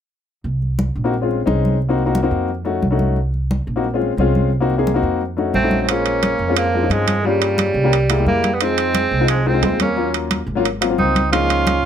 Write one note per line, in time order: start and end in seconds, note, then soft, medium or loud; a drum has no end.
0.44 0.92 C2 medium
0.44 high conga soft
0.62 high conga soft
0.79 high conga medium
0.96 1.43 A#1 medium
0.96 high conga soft
1.04 1.13 A#3 medium
1.04 1.13 C4 medium
1.04 1.13 D#4 medium
1.04 1.13 F#4 medium
1.14 high conga soft
1.21 1.39 G#3 medium
1.21 1.39 C4 medium
1.21 1.39 C#4 medium
1.21 1.40 F4 medium
1.31 high conga soft
1.46 2.26 C2 medium
1.46 1.76 G#3 medium
1.46 1.76 C4 medium
1.46 1.76 C#4 medium
1.46 1.76 D#4 medium
1.46 high conga medium
1.65 high conga medium
1.82 high conga soft
1.89 2.01 A#3 medium
1.89 2.01 C4 medium
1.89 2.01 D#4 medium
1.89 2.01 F#4 medium
1.99 high conga soft
2.05 2.18 A#3 medium
2.05 2.18 C4 medium
2.05 2.18 D#4 medium
2.05 2.18 F#4 medium
2.15 high conga medium
2.23 2.48 A#3 medium
2.23 2.49 C4 medium
2.23 2.49 D#4 medium
2.23 2.49 F#4 medium
2.31 2.79 F2 medium
2.31 high conga soft
2.48 high conga soft
2.65 2.83 A3 medium
2.65 2.83 C#4 medium
2.65 2.83 D#4 medium
2.65 2.84 F#4 medium
2.65 high conga soft
2.82 3.62 C2 medium
2.82 high conga medium
2.91 3.16 A3 medium
2.91 3.16 C#4 medium
2.91 3.17 D#4 medium
2.91 3.17 F#4 medium
2.99 high conga medium
3.16 high conga soft
3.34 high conga soft
3.51 high conga medium
3.67 4.15 A#1 medium
3.67 high conga soft
3.76 3.84 A#3 medium
3.76 3.85 C4 medium
3.76 3.85 D#4 medium
3.76 3.85 F#4 medium
3.84 high conga soft
3.94 4.11 G#3 medium
3.94 4.11 C4 medium
3.94 4.11 C#4 medium
3.94 4.12 F4 medium
4.01 high conga soft
4.17 4.97 C2 medium
4.17 4.48 G#3 medium
4.17 4.49 C4 medium
4.17 4.49 C#4 medium
4.17 4.49 F4 medium
4.17 high conga medium
4.35 high conga medium
4.52 high conga soft
4.60 4.73 A#3 medium
4.60 4.73 C4 medium
4.60 4.73 D#4 medium
4.60 4.73 F#4 medium
4.70 high conga soft
4.77 4.90 A#3 medium
4.77 4.90 C4 medium
4.77 4.90 D#4 medium
4.77 4.90 G#4 medium
4.87 high conga medium
4.94 5.20 A#3 medium
4.94 5.21 C4 medium
4.94 5.21 D#4 medium
4.94 5.21 F#4 medium
5.03 5.50 F2 medium
5.03 high conga soft
5.21 high conga soft
5.37 5.55 A3 medium
5.37 5.55 C#4 medium
5.37 5.55 D#4 medium
5.37 5.56 F#4 medium
5.37 high conga soft
5.53 6.33 A#1 medium
5.53 5.81 A3 medium
5.53 5.82 C4 medium
5.53 high conga medium
5.63 5.88 A3 medium
5.63 5.88 C#4 medium
5.63 5.89 D#4 medium
5.63 5.89 F#4 medium
5.71 high conga medium
5.81 5.90 A3 medium
5.81 5.90 C4 medium
5.88 6.30 G#3 medium
5.88 6.56 A#3 medium
5.88 6.56 C#4 medium
5.88 6.31 C#4 medium
5.88 6.31 F4 medium
5.88 6.30 C5 medium
5.88 high conga soft
5.88 high timbale medium
6.05 high conga soft
6.05 high timbale medium
6.23 high conga medium
6.23 high timbale medium
6.39 6.86 F2 medium
6.39 high conga soft
6.48 6.66 G#3 medium
6.48 6.66 C4 medium
6.48 6.66 C#4 medium
6.48 6.66 F4 medium
6.57 6.91 F3 medium
6.57 6.93 A#3 medium
6.57 high conga soft
6.57 high timbale medium
6.73 6.79 G#3 medium
6.73 6.79 C4 medium
6.73 6.80 C#4 medium
6.73 6.80 F4 medium
6.73 high conga soft
6.82 7.12 G#3 medium
6.82 7.12 C4 medium
6.82 7.12 C#4 medium
6.82 7.12 D#4 medium
6.90 7.69 G2 medium
6.90 7.26 F3 medium
6.90 7.27 G#3 medium
6.90 high conga medium
6.90 high timbale medium
7.07 high conga medium
7.07 high timbale medium
7.24 7.92 C#3 medium
7.24 7.66 G3 medium
7.24 8.27 G3 medium
7.24 7.67 A#3 medium
7.24 7.67 C#4 medium
7.24 7.67 F4 medium
7.24 high conga soft
7.41 high conga soft
7.41 high timbale medium
7.58 high conga medium
7.58 high timbale medium
7.74 8.22 C2 medium
7.74 high conga soft
7.84 7.92 G3 medium
7.84 7.93 A#3 medium
7.84 7.93 C#4 medium
7.84 7.93 G4 medium
7.92 high conga soft
7.92 high timbale medium
8.09 8.15 G#3 medium
8.09 8.15 A#3 medium
8.09 8.16 E4 medium
8.09 8.16 G4 medium
8.09 high conga soft
8.09 high timbale medium
8.18 8.48 G#3 medium
8.18 8.48 A#3 medium
8.18 8.48 E4 medium
8.18 8.48 G4 medium
8.26 9.05 F2 medium
8.26 8.54 G3 medium
8.26 8.55 A#3 medium
8.26 high conga medium
8.44 high conga medium
8.44 high timbale medium
8.54 8.64 G3 medium
8.54 8.64 B3 medium
8.60 9.02 G#3 medium
8.60 9.29 G#3 medium
8.60 9.02 C4 medium
8.60 9.29 C4 medium
8.60 9.03 D#4 medium
8.60 9.03 F4 medium
8.60 high conga soft
8.60 high timbale medium
8.78 high conga soft
8.78 high timbale medium
8.95 high conga medium
8.95 high timbale medium
9.11 9.59 C2 medium
9.11 high conga soft
9.20 9.38 G#3 medium
9.20 9.38 C4 medium
9.20 9.38 D#4 medium
9.20 9.38 F4 medium
9.28 9.48 F3 medium
9.28 9.49 G#3 medium
9.28 high conga soft
9.28 high timbale medium
9.45 9.51 G#3 medium
9.45 9.80 G#3 medium
9.45 9.52 C4 medium
9.45 9.80 C4 medium
9.45 9.52 D#4 medium
9.45 9.52 F4 medium
9.45 high conga soft
9.53 9.83 G#3 medium
9.53 9.84 C4 medium
9.53 9.84 D#4 medium
9.53 9.84 F4 medium
9.62 10.41 D#2 medium
9.62 high conga medium
9.62 high timbale medium
9.62 low timbale medium
9.80 10.12 A#3 medium
9.80 10.12 C#4 medium
9.80 high conga medium
9.80 high timbale medium
9.96 10.38 F#3 medium
9.96 10.38 A#3 medium
9.96 10.38 C#4 medium
9.96 10.39 F4 medium
9.96 high conga soft
10.14 high conga soft
10.14 high timbale medium
10.31 high conga medium
10.31 high timbale medium
10.47 10.94 G#1 medium
10.47 high conga soft
10.55 10.64 F#3 medium
10.55 10.64 A#3 medium
10.55 10.65 C#4 medium
10.55 10.65 F4 loud
10.65 high conga soft
10.65 high timbale medium
10.81 10.87 F#3 medium
10.81 10.87 A#3 medium
10.81 10.87 C4 medium
10.81 10.88 F4 medium
10.81 high conga soft
10.81 high timbale medium
10.89 11.19 F#3 medium
10.89 11.19 A#3 medium
10.89 11.20 C4 medium
10.89 11.20 F4 medium
10.98 11.78 C#2 medium
10.98 11.30 C4 medium
10.98 11.30 D#4 medium
10.98 high conga medium
11.15 high conga medium
11.15 high timbale medium
11.31 11.74 F3 medium
11.31 11.74 G#3 medium
11.31 11.74 A#3 medium
11.31 11.85 C#4 medium
11.31 11.74 D#4 medium
11.31 11.85 F4 loud
11.31 high conga soft
11.31 high timbale medium
11.50 high conga soft
11.50 high timbale medium
11.67 high conga medium
11.67 high timbale medium